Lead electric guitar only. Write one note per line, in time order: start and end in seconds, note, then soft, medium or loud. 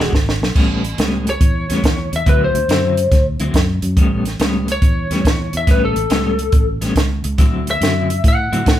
0.00 0.11 G#4 medium
1.30 2.11 C#5 loud
2.16 2.28 E5 medium
2.29 2.41 B4 medium
2.44 3.25 C5 medium
4.72 5.53 C#5 loud
5.57 5.69 E5 medium
5.71 5.83 B4 medium
5.85 6.66 A4 medium
7.71 8.24 E5 medium
8.28 8.80 F#5 medium